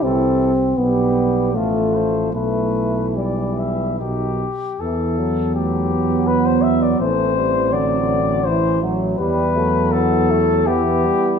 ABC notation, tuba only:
X:1
M:3/4
L:1/8
Q:1/4=81
K:Em
V:1 name="Tuba" clef=bass
C,,2 B,,,2 A,,,2 | B,,,4 B,,, z | E,,6 | A,,,6 |
E,,4- E,, z |]